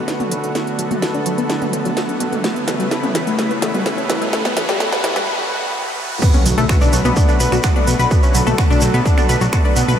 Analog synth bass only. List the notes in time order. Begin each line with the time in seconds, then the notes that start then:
0.31 B1
0.44 B1
0.79 B1
0.91 B1
1.15 B1
1.26 B1
1.38 B1
1.73 B1
1.85 B1
2.20 B1
2.33 B1
2.68 B1
2.80 B1
3.03 B1
3.15 B1
3.27 B1
3.62 B1
3.74 B1
4.10 B1
4.22 B1
4.57 B1
4.69 B1
4.93 B1
5.04 B1
5.16 B1
6.46 B1
6.58 B1
6.82 B1
6.93 B1
7.05 B1
7.40 B1
7.52 B1
7.88 B1
8.00 B1
8.35 B1
8.47 B1
8.70 B1
8.82 B1
8.94 B1
9.29 B1
9.41 B1
9.76 B1
9.88 B1